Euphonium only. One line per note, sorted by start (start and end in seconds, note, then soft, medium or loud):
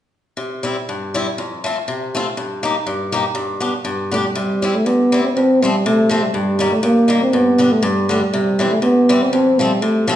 4.12 4.18 A3 medium
4.25 4.36 G3 soft
4.37 4.76 G3 medium
4.75 4.87 A3 medium
4.86 5.24 B3 medium
5.24 5.30 C4 medium
5.35 5.63 C4 medium
5.62 5.88 G3 medium
5.87 6.12 A3 medium
6.12 6.24 A3 medium
6.23 6.33 G3 medium
6.34 6.70 G3 medium
6.72 6.83 A3 medium
6.84 7.19 A#3 medium
7.22 7.35 C4 medium
7.33 7.73 B3 medium
7.72 7.85 A3 medium
7.84 8.11 G3 medium
8.10 8.22 A3 medium
8.21 8.32 G3 soft
8.33 8.69 G3 medium
8.70 8.82 A3 medium
8.82 9.22 B3 medium
9.21 9.32 C4 medium
9.33 9.61 C4 medium
9.59 9.83 G3 medium
9.82 10.08 A3 medium
10.10 10.16 A3 medium